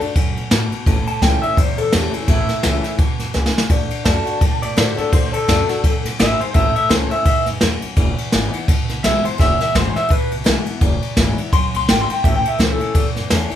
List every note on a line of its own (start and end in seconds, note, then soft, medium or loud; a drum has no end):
0.01 0.16 D4 soft
0.01 0.15 F#4 medium
0.01 muted upright bass stroke medium
0.01 ride medium
0.16 0.50 F#2 medium
0.16 0.35 F#2 medium
0.16 kick loud
0.16 ride medium
0.37 0.51 B2 medium
0.37 ride medium
0.51 0.71 A2 loud
0.51 0.86 B2 loud
0.51 snare loud
0.51 ride medium
0.72 muted upright bass stroke medium
0.72 ride medium
0.86 1.06 A1 medium
0.86 1.55 A2 medium
0.86 kick loud
0.86 ride medium
1.07 1.22 A5 loud
1.07 muted upright bass stroke medium
1.07 ride medium
1.22 1.41 C#2 medium
1.22 1.42 E3 medium
1.22 1.43 A3 medium
1.22 1.43 C#4 medium
1.22 1.42 E4 medium
1.22 1.41 G5 loud
1.22 kick medium
1.22 snare medium
1.22 ride medium
1.42 1.58 C#4 soft
1.42 1.58 E4 medium
1.42 1.57 E5 loud
1.42 muted upright bass stroke medium
1.42 ride medium
1.57 1.77 D2 medium
1.57 2.26 E2 medium
1.57 1.78 C5 medium
1.57 kick loud
1.57 ride medium
1.78 1.93 F#2 medium
1.78 1.94 A4 medium
1.78 ride medium
1.92 2.13 E2 loud
1.92 2.14 E3 medium
1.92 2.14 A3 loud
1.92 2.14 C#4 medium
1.92 2.13 E4 loud
1.92 2.15 G4 medium
1.92 snare loud
1.92 ride loud
2.13 2.29 C#4 soft
2.13 2.28 E4 medium
2.13 muted upright bass stroke medium
2.13 ride medium
2.28 2.48 A1 medium
2.28 2.96 A2 loud
2.28 2.98 E4 loud
2.28 kick loud
2.28 snare soft
2.28 ride medium
2.49 muted upright bass stroke medium
2.49 snare soft
2.49 ride medium
2.63 2.84 C#2 medium
2.63 2.84 E3 medium
2.63 2.84 A3 medium
2.63 2.84 C#4 medium
2.63 2.83 E4 loud
2.63 snare loud
2.63 ride medium
2.84 2.99 C#4 soft
2.84 2.99 E4 medium
2.84 muted upright bass stroke medium
2.84 snare soft
2.84 ride medium
2.98 3.19 D2 medium
2.98 3.34 B2 medium
2.98 kick loud
2.98 ride medium
3.19 3.34 F#2 medium
3.19 snare soft
3.19 ride medium
3.34 3.54 C#2 medium
3.34 3.69 C#3 medium
3.34 snare medium
3.46 snare medium
3.56 muted upright bass stroke medium
3.56 snare loud
3.70 3.90 D2 loud
3.70 4.04 D3 medium
3.70 kick loud
3.70 ride medium
3.90 muted upright bass stroke medium
3.90 ride medium
4.05 4.25 F#2 medium
4.05 4.26 D3 medium
4.05 4.26 A3 medium
4.05 4.26 D4 medium
4.05 4.24 F#4 medium
4.05 4.61 A5 loud
4.05 kick medium
4.05 snare medium
4.05 ride medium
4.25 4.41 D4 soft
4.25 4.40 F#4 medium
4.25 muted upright bass stroke medium
4.25 ride medium
4.41 4.61 F#2 medium
4.41 5.10 A2 medium
4.41 kick loud
4.41 ride medium
4.62 4.76 B2 medium
4.62 4.77 D5 loud
4.62 ride medium
4.76 4.97 A2 loud
4.76 4.97 D3 medium
4.76 4.97 A3 medium
4.76 4.97 D4 medium
4.76 4.96 F#4 loud
4.76 4.97 C5 medium
4.76 snare loud
4.76 ride loud
4.97 5.13 D4 medium
4.97 5.12 F#4 medium
4.97 5.12 A4 medium
4.97 muted upright bass stroke medium
4.97 ride medium
5.13 5.32 D2 medium
5.13 5.47 D3 medium
5.13 5.33 C5 loud
5.13 kick loud
5.13 snare soft
5.13 ride medium
5.33 6.02 A4 loud
5.33 muted upright bass stroke medium
5.33 ride medium
5.48 5.68 F#2 medium
5.48 5.68 D3 medium
5.48 5.68 A3 medium
5.48 5.68 D4 medium
5.48 5.68 F#4 medium
5.48 kick medium
5.48 snare loud
5.48 ride medium
5.69 5.84 D4 medium
5.69 5.83 F#4 medium
5.69 muted upright bass stroke medium
5.69 snare soft
5.69 ride medium
5.84 6.18 F#2 medium
5.84 6.03 F#2 medium
5.84 kick loud
5.84 ride medium
6.05 6.19 B2 medium
6.05 snare soft
6.05 ride medium
6.19 6.39 G#1 loud
6.19 6.54 G#2 loud
6.19 6.40 E5 loud
6.19 snare loud
6.19 ride medium
6.40 6.55 C5 medium
6.40 muted upright bass stroke medium
6.40 ride medium
6.54 6.74 A1 loud
6.54 7.23 A2 loud
6.54 6.75 E5 loud
6.54 kick loud
6.54 ride medium
6.76 6.90 E5 medium
6.76 muted upright bass stroke medium
6.76 ride medium
6.89 7.10 C#2 medium
6.89 7.10 E3 medium
6.89 7.10 A3 medium
6.89 7.11 C#4 loud
6.89 7.11 E4 loud
6.89 7.10 C5 loud
6.89 kick medium
6.89 snare loud
6.89 ride medium
7.11 7.26 C#4 soft
7.11 7.26 E4 medium
7.11 7.25 E5 loud
7.11 muted upright bass stroke medium
7.11 ride medium
7.25 7.45 D2 loud
7.25 7.61 G#2 medium
7.25 7.46 E5 loud
7.25 kick loud
7.25 ride medium
7.46 7.61 F#2 loud
7.46 snare soft
7.46 ride medium
7.61 7.81 E2 loud
7.61 7.96 F#2 medium
7.61 snare loud
7.61 ride medium
7.82 muted upright bass stroke medium
7.82 ride medium
7.96 8.16 E1 loud
7.96 8.66 E2 loud
7.96 kick loud
7.96 ride medium
8.18 muted upright bass stroke medium
8.18 ride medium
8.32 8.52 G#1 medium
8.32 8.53 E3 medium
8.32 8.53 G#3 loud
8.32 8.53 B3 loud
8.32 8.54 E4 loud
8.32 snare loud
8.32 ride medium
8.53 8.69 B3 medium
8.53 8.69 E4 medium
8.53 muted upright bass stroke medium
8.53 ride medium
8.68 8.88 A1 medium
8.68 9.37 B2 medium
8.68 kick loud
8.68 ride medium
8.89 9.04 C#2 medium
8.89 snare soft
8.89 ride medium
9.04 9.24 B1 medium
9.04 9.24 E3 medium
9.04 9.25 G#3 medium
9.04 9.25 B3 loud
9.04 9.24 E4 loud
9.04 9.24 E5 loud
9.04 snare loud
9.04 ride medium
9.25 9.40 B3 soft
9.25 9.39 E4 medium
9.25 9.39 C5 medium
9.25 muted upright bass stroke medium
9.25 ride medium
9.38 9.59 E1 loud
9.38 10.07 E2 medium
9.38 9.60 E5 loud
9.38 kick loud
9.38 snare soft
9.38 ride medium
9.60 9.75 E5 loud
9.60 muted upright bass stroke medium
9.60 snare soft
9.60 ride medium
9.75 9.94 G#1 medium
9.75 9.95 E3 medium
9.75 9.95 G#3 medium
9.75 9.95 B3 medium
9.75 9.94 E4 medium
9.75 9.96 C5 loud
9.75 kick medium
9.75 snare loud
9.75 ride medium
9.95 10.11 B3 medium
9.95 10.10 E4 medium
9.95 10.10 E5 loud
9.95 muted upright bass stroke medium
9.95 snare soft
9.95 ride medium
10.09 10.30 A1 medium
10.09 10.78 B2 medium
10.09 10.31 B4 loud
10.09 kick loud
10.09 ride medium
10.31 10.46 C#2 loud
10.31 ride medium
10.44 10.66 B1 loud
10.44 10.65 E3 loud
10.44 10.66 G#3 medium
10.44 10.66 B3 loud
10.44 10.65 E4 loud
10.44 snare loud
10.44 ride medium
10.66 10.81 B3 soft
10.66 10.81 E4 medium
10.66 muted upright bass stroke medium
10.66 ride medium
10.81 11.01 E1 loud
10.81 11.50 E2 medium
10.81 kick loud
10.81 ride medium
11.02 muted upright bass stroke medium
11.02 ride medium
11.17 11.36 G#1 medium
11.17 11.38 E3 medium
11.17 11.38 G#3 medium
11.17 11.38 B3 loud
11.17 11.38 E4 medium
11.17 kick medium
11.17 snare loud
11.17 ride medium
11.38 11.53 B3 soft
11.38 11.53 E4 medium
11.38 muted upright bass stroke medium
11.38 ride medium
11.52 11.72 A1 loud
11.52 11.87 F#2 medium
11.52 11.64 C6 loud
11.52 kick loud
11.52 ride medium
11.74 11.88 C#2 loud
11.74 11.88 C6 loud
11.74 ride medium
11.89 12.08 G#1 loud
11.89 12.23 G#2 loud
11.89 12.01 G5 loud
11.89 snare loud
11.89 ride loud
12.01 12.12 C6 loud
12.10 12.24 G5 medium
12.10 muted upright bass stroke medium
12.10 ride medium
12.24 12.43 A1 loud
12.24 12.93 A2 loud
12.24 12.35 E5 loud
12.24 kick loud
12.24 ride medium
12.36 12.48 G5 loud
12.45 12.59 E5 medium
12.45 muted upright bass stroke medium
12.45 ride medium
12.59 12.79 C#2 medium
12.59 12.79 E3 medium
12.59 12.79 A3 medium
12.59 12.78 C#4 medium
12.59 12.77 E4 loud
12.59 12.71 C5 loud
12.59 kick medium
12.59 snare loud
12.59 ride medium
12.71 13.06 A4 loud
12.78 12.94 C#4 soft
12.78 12.94 E4 medium
12.78 muted upright bass stroke medium
12.78 ride medium
12.95 13.14 D2 loud
12.95 13.55 E2 medium
12.95 kick loud
12.95 ride medium
13.16 13.30 F#2 loud
13.16 snare soft
13.16 ride medium
13.30 13.50 E2 medium
13.30 13.50 E3 medium
13.30 13.51 A3 medium
13.30 13.50 C#4 loud
13.30 13.49 E4 medium
13.30 snare loud
13.30 ride medium
13.50 13.55 C#4 soft
13.50 13.55 E4 medium
13.50 muted upright bass stroke medium
13.50 ride medium